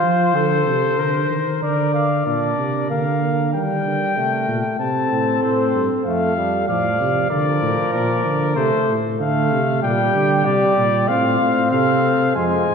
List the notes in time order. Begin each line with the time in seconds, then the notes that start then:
Already playing: F4 C5
0.03 F3
0.35 D3 A4
0.67 C3
0.98 D3 A#4
1.30 D#3
1.62 D3 A#4 D5
1.94 F5
2.26 A#2 D4 A#4 D5
2.58 C3
2.90 D3 A#3 F5
3.22 A#3
3.53 D#3 G3 A#4 G5
3.85 D3
4.17 C3 A3
4.48 A#2
4.80 C3 C4 A4 A5
5.11 A2
5.43 A2 C5
5.75 G2
6.06 F2 A3 A4 F5
6.37 G3
6.68 A2 F3 D5 F5
7.00 C3
7.30 D3 F3 A#4 D5
7.62 A2
7.93 A#2 D5
8.25 D3
8.56 C3 A3 A4 C5
8.88 A2
9.19 D3 A3 A4 F5
9.51 C3
9.83 A#2 G3 G4 G5
10.15 D3
10.45 C3 G3 D5
10.77 A#2
11.08 A2 C4 F4 F5
11.40 A2
11.71 C3 A4 F5
12.35 F2 G#3 C5 G#5
12.67 G#2